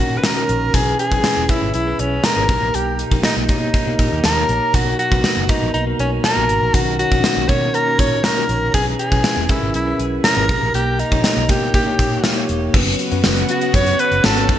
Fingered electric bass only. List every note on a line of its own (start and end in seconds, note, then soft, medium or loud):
0.00 0.18 A#2 medium
0.49 0.68 A#1 medium
0.74 0.93 B1 medium
1.12 1.21 B1 medium
1.37 1.46 E1 medium
1.62 1.71 G#1 medium
1.74 1.93 B1 medium
1.99 2.18 B1 medium
2.36 2.46 G#1 medium
2.49 2.58 B1 medium
2.62 2.71 A#1 medium
2.74 3.02 B1 loud
3.12 3.21 A#1 medium
3.37 3.51 B1 medium
3.49 3.68 B2 medium
3.87 3.96 B2 medium
3.99 4.08 A#2 medium
4.12 4.21 D#2 medium
4.24 4.43 D#2 medium
4.49 4.58 A#1 medium
4.74 4.93 B1 medium
5.12 5.21 B1 medium
5.37 5.46 F#1 medium
5.62 5.71 A#1 medium
5.74 5.93 B1 medium
5.99 6.18 B1 medium
6.37 6.46 A#1 medium
6.49 6.58 G#1 medium
6.62 6.71 A#1 medium
6.74 7.02 B1 medium
7.12 7.21 A#1 medium
7.37 7.46 B1 medium
7.49 7.68 B2 medium
7.99 8.18 A#2 medium
8.49 8.68 A#1 medium
8.74 8.93 B1 medium
9.12 9.21 B1 medium
9.37 9.46 E1 medium
9.62 9.71 G#1 medium
9.74 9.93 B1 medium
9.99 10.18 B1 medium
10.37 10.46 G#1 medium
10.49 10.59 B1 medium
10.62 10.71 A#1 medium
10.74 11.02 B1 medium
11.12 11.21 A#1 medium
11.37 11.46 B1 medium
11.49 11.68 B2 medium
11.99 12.18 A#2 medium
12.49 12.68 E1 medium
12.74 12.93 F#1 loud
13.12 13.21 F#2 medium
13.24 13.43 F#1 medium
13.74 13.93 F#2 loud
14.11 14.21 F#1 medium
14.24 14.49 G#1 medium
14.49 14.59 F#1 medium